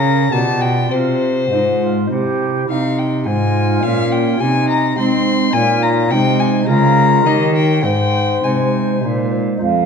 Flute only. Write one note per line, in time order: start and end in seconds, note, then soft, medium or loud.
0.00 0.34 A#4 medium
0.32 0.90 G4 medium
0.91 1.44 F4 medium
1.51 1.58 D#4 medium
1.80 2.10 F4 medium
2.11 2.68 G4 medium
2.69 3.28 D#4 medium
3.27 4.43 F4 medium
4.41 4.98 D#4 medium
4.98 5.54 D#4 medium
5.53 6.12 F4 medium
6.10 6.68 D#4 medium
6.67 7.27 F4 medium
7.25 7.83 G4 medium
7.83 9.30 C5 medium
9.63 9.86 F5 medium